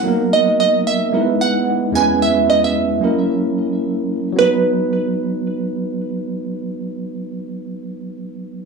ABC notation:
X:1
M:4/4
L:1/16
Q:"Swing 16ths" 1/4=111
K:B
V:1 name="Synth pluck"
f2 d2 d2 e4 f4 g2 | e2 d e8- e3 z2 | B16- | B16 |]
V:2 name="Tine electric piano"
[F,A,B,DA]8 [G,B,DEAB]6 [E,,G,B,CEB]2- | [E,,G,B,CEB]6 [F,A,CEA]8- [F,A,CEA]2 | [F,B,DB]16- | [F,B,DB]16 |]